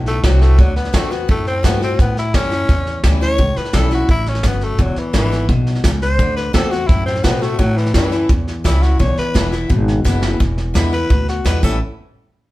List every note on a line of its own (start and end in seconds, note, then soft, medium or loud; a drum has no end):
0.00 0.23 B1 loud
0.00 0.55 A2 medium
0.06 0.25 A3 loud
0.06 snare soft
0.24 0.58 C2 medium
0.24 0.57 D3 medium
0.24 0.43 F#3 medium
0.24 0.57 A3 medium
0.24 0.58 C4 loud
0.24 0.58 F#4 loud
0.24 kick medium
0.24 snare loud
0.24 hi-hat pedal medium
0.41 0.61 A3 loud
0.41 snare soft
0.58 0.93 D2 medium
0.58 0.92 D3 medium
0.58 0.75 F#3 loud
0.58 kick loud
0.58 snare soft
0.76 0.96 B3 medium
0.76 snare soft
0.85 snare soft
0.93 1.28 E2 medium
0.93 1.10 D3 medium
0.93 1.11 A3 medium
0.93 1.13 A3 medium
0.93 1.11 C4 medium
0.93 1.10 F#4 medium
0.93 kick medium
0.93 snare loud
0.93 hi-hat pedal medium
1.11 1.29 B3 medium
1.11 1.29 C4 medium
1.11 1.28 F#4 medium
1.11 snare soft
1.29 1.63 F#2 medium
1.29 1.95 A2 loud
1.29 1.47 A3 medium
1.29 kick loud
1.29 snare soft
1.47 1.64 C4 loud
1.47 snare soft
1.63 1.98 G2 medium
1.63 1.80 D3 medium
1.63 1.81 A3 medium
1.63 1.82 B3 medium
1.63 1.81 C4 loud
1.63 1.80 F#4 loud
1.63 kick medium
1.63 snare loud
1.63 hi-hat pedal medium
1.81 1.99 C4 medium
1.81 2.00 C4 medium
1.81 1.98 F#4 medium
1.81 snare soft
1.99 2.33 A2 medium
1.99 2.66 A2 medium
1.99 2.17 B3 medium
1.99 kick loud
1.99 snare soft
2.17 2.36 E4 loud
2.17 snare soft
2.34 2.68 F#2 medium
2.34 2.51 E3 medium
2.34 2.51 G3 medium
2.34 3.02 C#4 loud
2.34 2.52 C#4 medium
2.34 2.50 E4 medium
2.34 kick medium
2.34 snare loud
2.34 hi-hat pedal medium
2.51 2.69 C#4 soft
2.51 2.68 E4 medium
2.51 snare soft
2.69 3.03 E2 medium
2.69 3.36 E2 medium
2.69 kick loud
2.69 snare soft
2.87 snare soft
3.04 3.38 D2 medium
3.04 3.21 E3 medium
3.04 3.22 G3 loud
3.04 3.22 C#4 loud
3.04 3.20 E4 loud
3.04 kick medium
3.04 snare loud
3.04 hi-hat pedal medium
3.21 3.39 C#4 medium
3.21 3.38 E4 medium
3.21 3.58 C#5 loud
3.21 snare soft
3.38 3.55 C#2 medium
3.38 4.05 A2 medium
3.38 kick loud
3.38 snare soft
3.56 3.74 B4 medium
3.56 muted upright bass stroke soft
3.56 snare soft
3.65 snare soft
3.73 4.08 B1 medium
3.73 3.90 E3 medium
3.73 3.91 G3 medium
3.73 3.91 C#4 medium
3.73 3.90 E4 medium
3.73 3.91 A4 loud
3.73 kick medium
3.73 snare loud
3.73 hi-hat pedal medium
3.91 4.09 C#4 soft
3.91 4.08 E4 medium
3.91 4.10 F#4 medium
3.91 snare soft
4.09 4.43 A1 medium
4.09 4.43 G2 medium
4.09 4.30 E4 loud
4.09 kick loud
4.09 snare soft
4.26 4.45 C#4 medium
4.26 snare soft
4.35 snare soft
4.43 4.78 G1 medium
4.43 4.77 F#2 loud
4.43 kick medium
4.43 snare loud
4.43 hi-hat pedal medium
4.47 4.65 B3 medium
4.61 4.83 A3 medium
4.61 snare soft
4.78 4.95 E1 medium
4.78 5.46 E2 loud
4.78 5.00 F#3 medium
4.78 kick loud
4.78 snare soft
4.96 5.15 E3 medium
4.96 muted upright bass stroke soft
4.96 snare soft
5.13 5.48 G#1 medium
5.13 5.31 D3 medium
5.13 5.31 G#3 medium
5.13 5.31 B3 medium
5.13 5.30 E4 loud
5.13 kick medium
5.13 snare loud
5.13 hi-hat pedal medium
5.17 5.50 E3 loud
5.31 5.49 B3 medium
5.31 5.48 E4 medium
5.31 snare soft
5.49 5.83 B1 medium
5.49 5.83 B2 medium
5.49 kick loud
5.49 snare soft
5.67 snare soft
5.75 snare soft
5.84 6.18 C#2 medium
5.84 6.18 C#3 medium
5.84 kick medium
5.84 snare loud
5.84 hi-hat pedal medium
6.02 6.36 C5 loud
6.02 snare soft
6.19 6.53 D2 medium
6.19 6.52 D3 loud
6.19 kick loud
6.19 snare soft
6.36 6.54 B4 medium
6.36 snare soft
6.53 6.88 E2 medium
6.53 6.71 D3 medium
6.53 6.71 A3 medium
6.53 6.71 C4 loud
6.53 6.70 F#4 loud
6.53 6.72 A4 loud
6.53 kick medium
6.53 snare loud
6.53 hi-hat pedal medium
6.71 6.90 C4 medium
6.71 6.89 F#4 medium
6.71 6.88 F#4 medium
6.71 snare soft
6.87 7.23 F#2 medium
6.87 7.56 A2 medium
6.87 7.05 E4 loud
6.87 kick loud
6.87 snare soft
7.06 7.25 C4 medium
7.06 snare soft
7.16 snare soft
7.23 7.58 B2 medium
7.23 7.41 D3 medium
7.23 7.41 A3 medium
7.23 7.44 B3 medium
7.23 7.42 C4 loud
7.23 7.40 F#4 medium
7.23 kick medium
7.23 snare loud
7.23 hi-hat pedal medium
7.41 7.60 A3 loud
7.41 7.60 C4 medium
7.41 7.59 F#4 medium
7.41 snare soft
7.59 8.26 A2 loud
7.59 7.93 A2 medium
7.59 7.78 F#3 loud
7.59 kick loud
7.59 snare soft
7.77 7.94 E3 medium
7.77 snare soft
7.86 snare soft
7.94 8.29 F#2 medium
7.94 8.28 E3 loud
7.94 8.11 E3 medium
7.94 8.12 G3 medium
7.94 8.12 C#4 loud
7.94 8.11 E4 medium
7.94 kick medium
7.94 snare loud
7.94 hi-hat pedal medium
8.12 8.30 C#4 medium
8.12 8.29 E4 medium
8.12 snare soft
8.29 8.64 E2 medium
8.29 8.96 E2 medium
8.29 kick loud
8.29 snare soft
8.48 snare soft
8.64 8.99 C#2 medium
8.64 8.81 E3 medium
8.64 8.82 G3 medium
8.64 8.82 C#4 loud
8.64 8.84 E4 medium
8.64 8.81 E4 loud
8.64 kick medium
8.64 snare loud
8.64 hi-hat pedal medium
8.82 9.00 C#4 medium
8.82 8.99 E4 medium
8.82 8.99 F#4 medium
8.82 snare soft
8.99 9.16 B1 medium
8.99 9.66 E2 loud
8.99 9.17 C#5 medium
8.99 kick loud
8.99 snare soft
9.17 9.52 B4 medium
9.17 muted upright bass stroke soft
9.17 snare soft
9.34 9.69 E1 medium
9.34 9.51 D3 medium
9.34 9.52 G#3 medium
9.34 9.52 B3 medium
9.34 9.51 E4 medium
9.34 kick medium
9.34 snare loud
9.34 hi-hat pedal medium
9.52 9.70 B3 medium
9.52 9.69 E4 medium
9.52 snare soft
9.70 10.04 G#1 medium
9.70 10.36 B2 medium
9.70 kick loud
9.70 snare soft
9.88 snare soft
10.04 10.39 F#1 medium
10.04 10.21 D3 loud
10.04 10.22 G#3 medium
10.04 10.22 B3 loud
10.04 10.21 E4 loud
10.04 kick medium
10.04 snare medium
10.04 hi-hat pedal medium
10.22 10.40 B3 medium
10.22 10.39 E4 medium
10.22 snare medium
10.40 10.74 E1 medium
10.40 11.07 E2 loud
10.40 kick loud
10.40 snare soft
10.58 snare soft
10.74 11.09 E2 medium
10.74 10.91 D3 medium
10.74 10.92 G#3 medium
10.74 10.92 B3 medium
10.74 10.91 E4 loud
10.74 snare loud
10.74 hi-hat pedal medium
10.92 11.10 B3 medium
10.92 11.09 E4 medium
10.92 11.27 B4 loud
10.92 snare soft
11.10 11.44 D2 medium
11.10 11.62 B2 medium
11.10 kick loud
11.10 snare soft
11.28 11.45 F#4 medium
11.28 snare soft
11.45 11.62 E2 medium
11.45 11.62 D3 medium
11.45 11.63 G#3 medium
11.45 11.63 B3 medium
11.45 11.63 E4 medium
11.45 11.63 B4 medium
11.45 snare loud
11.45 hi-hat pedal medium
11.63 11.79 A1 medium
11.63 11.77 A2 medium
11.63 11.77 E3 medium
11.63 11.77 G3 medium
11.63 11.77 C#4 medium
11.63 11.77 E4 loud
11.63 11.80 A4 medium
11.63 kick loud
11.63 crash medium